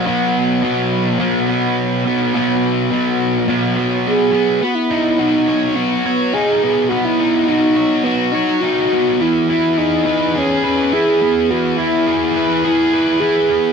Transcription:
<<
  \new Staff \with { instrumentName = "Soft synth lead" } { \time 4/4 \key b \major \tempo 4 = 105 r1 | r2. gis'4 | fis'16 e'8. dis'4 b8 b8 gis'8 gis'8 | fis'16 e'8. dis'4 b8 dis'8 fis'4 |
e'8 e'8 dis'4 cis'8 cis'8 gis'4 | fis'8 e'4. e'4 gis'4 | }
  \new Staff \with { instrumentName = "Distorted electric guitar" } { \time 4/4 \key b \major <b, fis b>4 <b, fis b>4 <b, fis b>8 <fis b>4 <fis b>8 | <b, fis b>4 <b, fis b>4 <b, fis b>8 <fis b>4 <fis b>8 | b8 dis'8 fis'8 cis''8 fis'8 cis''8 dis'8 b8 | b8 dis'8 fis'8 cis''8 fis'8 cis''8 dis'8 b8 |
e8 e'8 gis'8 b'8 gis'8 b'8 e'8 b8 | e8 e'8 gis'8 b'8 gis'8 b'8 e'8 b8 | }
>>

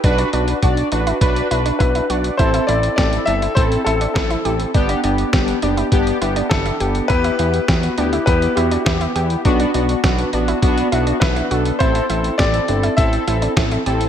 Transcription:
<<
  \new Staff \with { instrumentName = "Grand piano" } { \time 4/4 \key b \phrygian \tempo 4 = 102 r2. b'4 | c''8 d''8 d''8 e''8 c''8 a'8 a'8. r16 | r2. a'4 | b'2 b'8 g'8 g'8. r16 |
r2. b'4 | c''4 d''4 e''4 r4 | }
  \new Staff \with { instrumentName = "Analog polysynth" } { \time 4/4 \key b \phrygian <d' fis' b'>8 <d' fis' b'>8 <d' fis' d''>8 <d' fis' b'>8 <d' fis' b'>8 <d' fis' b'>8 <d' fis' b'>8 <d' fis' d''>8 | <c' e' a'>8 <c' e' a'>8 <c' e' a'>8 <c' e' a'>8 <c' e' a'>8 <c' e' a'>8 <c' e' a'>8 <c' e' a'>8 | <b d' g'>8 <b d' g'>8 <b d' g'>8 <b d' g'>8 <b d' g'>8 <b d' g'>8 <b d'>8 <b d' g'>8 | <b e' g'>8 <b e' g'>8 <b e' fis'>8 <b e' g'>8 <b e' g'>8 <b e' fis'>8 <b e' g'>8 <b e' g'>8 |
<b d' fis'>8 <b d' fis'>8 <b d' fis'>8 <b d' fis'>8 <b d' fis'>8 <b d' fis'>8 <b d' fis'>8 <b d' a'>8 | <c' e' a'>8 <c' e' a'>8 <c' e' a'>8 <c' e' a'>8 <c' e' a'>8 <c' e' a'>8 <c' e' a'>8 <c' e' a'>8 | }
  \new Staff \with { instrumentName = "Synth arpeggio sound" } { \time 4/4 \key b \phrygian d'16 d'16 d'8 fis'8 d'16 e'8 r16 e'16 d'16 e'16 e'16 fis'8 | e'16 e'16 e'8 g'8 d'16 e'8 r16 e'16 d'16 e'16 e'16 g'8 | d'16 d'16 d'8 g'8 d'16 e'8 r16 e'16 d'16 e'16 e'16 g'8 | e'16 e'16 e'8 g'8 d'16 e'8 r16 e'16 d'16 e'16 e'16 g'8 |
d'16 d'16 d'8 fis'8 d'16 e'8 r16 e'16 d'16 e'16 e'16 fis'8 | e'16 e'16 e'8 g'8 d'16 e'8 r16 e'16 d'16 e'16 e'16 g'8 | }
  \new Staff \with { instrumentName = "Analog synth bass" } { \clef bass \time 4/4 \key b \phrygian b,,8 b,,8 b,,8 a,,8 b,,8 b,,8 b,,8 b,,8 | a,,8 a,,8 a,,8 g,,8 a,,8 a,,8 a,,8 a,,8 | g,,8 g,,8 g,,8 fis,,8 g,,8 g,,8 g,,8 g,,8 | e,8 e,8 e,8 d,8 e,8 e,8 e,8 e,8 |
b,,8 b,,8 b,,8 a,,8 b,,8 b,,8 b,,8 b,,8 | a,,8 a,,8 a,,8 g,,8 a,,8 a,,8 a,,8 a,,8 | }
  \new DrumStaff \with { instrumentName = "Drums" } \drummode { \time 4/4 <hh bd>16 hh16 hh16 hh16 <hh bd>16 hh16 hh16 hh16 <hh bd>16 hh16 hh16 hh16 <hh bd>16 hh16 hh16 hh16 | <hh bd>16 hh16 hh16 hh16 <hh bd sn>16 hh16 hh16 hh16 <hh bd>16 hh16 hh16 hh16 <hh bd sn>16 hh16 hh16 hh16 | <hh bd>16 hh16 hh16 hh16 <hh bd sn>16 hh16 hh16 hh16 <hh bd>16 hh16 hh16 hh16 <hh bd sn>16 hh16 hh16 hh16 | <hh bd>16 hh16 hh16 hh16 <hh bd sn>16 hh16 hh16 hh16 <hh bd>16 hh16 hh16 hh16 <hh bd sn>16 hh16 hh16 hh16 |
<hh bd>16 hh16 hh16 hh16 <hh bd sn>16 hh16 hh16 hh16 <hh bd>16 hh16 hh16 hh16 <hh bd sn>16 hh16 hh16 hh16 | <hh bd>16 hh16 hh16 hh16 <hh bd sn>16 hh16 hh16 hh16 <hh bd>16 hh16 hh16 hh16 <hh bd sn>16 hh16 hh16 hh16 | }
>>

